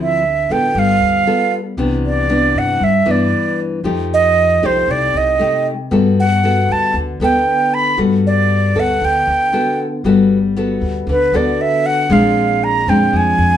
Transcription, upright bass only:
Already playing: D2
0.49 A1
0.75 G1
1.00 D2
1.77 C2
2.55 G2
2.81 G2
3.06 G2
3.84 F2
4.62 C2
4.88 C2
5.14 C2
5.92 G2
6.69 D2
6.94 D2
7.20 D2
7.98 G2
8.75 D2
9.02 D2
9.27 D2
10.04 G1
10.81 D2
11.07 D2
11.33 D2
12.09 A#1
12.87 F2
13.13 F2
13.38 F2

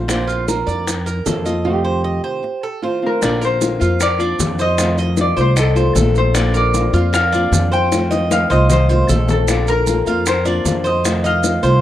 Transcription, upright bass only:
Already playing: A#1
0.67 F2
1.26 F2
3.22 A#1
3.81 F2
4.39 F2
5.37 C2
5.95 A#1
6.93 F2
7.52 F2
8.50 C2
9.09 A#1
10.06 F2
10.65 F2
11.63 C2

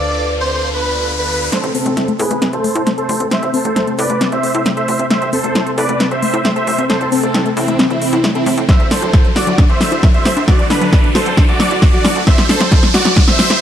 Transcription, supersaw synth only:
Already playing: D5
0.40 C5
0.74 B4
1.19 B4
1.52 A4 C5
1.75 C4 A4
2.19 G#4 B4
2.53 A4 C5
2.98 A4 C5
3.31 C5 E5
3.54 A4 C5
3.99 B4 D5
4.32 C5 E5
4.77 C5 E5
5.10 C5 E5
5.33 A4 C5
5.78 B4 D5
6.11 C5 E5
6.56 C5 E5
6.90 A4 C5
7.12 C4 A4
7.57 C4 E4
7.90 C4 E4
8.35 C4 E4
8.69 C5 E5
8.91 A4 C5
9.36 F#4 D5
9.69 C5 E5
10.14 C5 E5
10.48 F#4 D5
10.70 D4 B4
11.15 A4 C5
11.49 F#4 D5
11.93 F#4 D5
12.27 C5 E5
12.49 A4 C5
12.94 F#4 D5
13.28 C5 E5

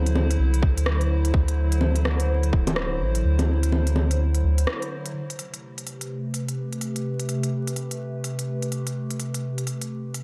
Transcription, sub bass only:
Already playing: D2
0.39 C2
0.77 D2
1.34 D2
2.53 D1
3.00 A1
3.24 D2
4.44 D2

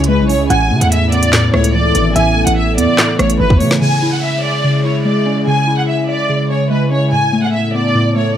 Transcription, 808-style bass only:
Already playing: C#2
0.19 B1
0.35 C#2
0.50 A1
0.71 C#3
0.81 E2
1.54 C#2
1.95 G#1
2.16 A1
2.47 A1
2.78 E2
3.19 A1
3.40 G#1
3.61 C#3

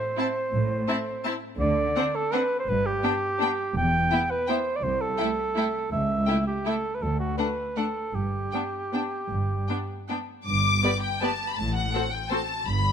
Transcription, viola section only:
0.17 C4
0.88 C4
1.24 C4
1.96 C4
2.33 C4
3.03 B3
3.41 B3
4.12 B3
4.49 B3
5.19 A3
5.56 A3
6.27 A3
6.66 A3
7.38 A3
7.76 A3
8.53 B3
8.93 B3
9.70 B3
10.09 B3
10.83 B3 G4
11.22 B3 G4
11.94 C4 F#4
12.31 C4 F#4

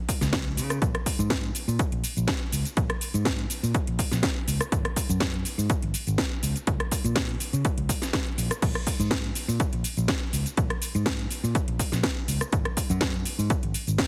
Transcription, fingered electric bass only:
0.21 C#2
0.57 C#3
0.82 A#1
1.19 G#2
1.68 A#2
1.92 A#1
2.17 A#1
2.53 C#2
2.77 A#1
3.14 G#2
3.63 A#2
3.88 A#1
4.12 A#1
4.48 C#2
4.72 G#1
5.09 F#2
5.45 muted fingered electric bass stroke
5.58 G#2
5.83 G#1
6.07 G#1
6.43 C#2
6.67 C#2
7.04 A#2
7.53 C#3
7.78 C#2
8.38 A#1
8.62 A#1
9.00 G#2
9.48 A#2
9.73 A#1
9.97 A#1
10.33 C#2
10.57 A#1
10.95 G#2
11.44 A#2
11.68 A#1
11.92 A#1
12.28 C#2
12.53 G#1
12.90 F#2
13.26 muted fingered electric bass stroke
13.39 G#2
13.50 muted fingered electric bass stroke
13.63 G#1
13.87 G#1

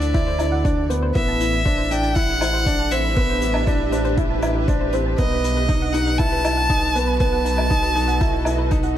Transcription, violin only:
Already playing: D5
1.15 E5
1.91 G5
2.16 F#5
2.91 E5
5.18 D#5
5.93 F#5
6.18 A5
7.19 A5

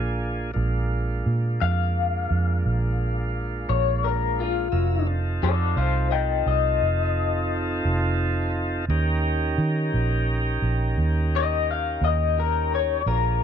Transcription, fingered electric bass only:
Already playing: A#1
0.56 A#1
1.26 A#2
1.61 F2
2.31 F2
2.65 A#1
3.69 A#1
4.73 F1
5.43 F2
5.77 C2
6.46 C2
6.82 F1
7.85 F1
8.88 D#2
9.58 D#3
9.94 A#1
10.62 A#1
10.98 D#2
12.01 D#2
13.06 A#1

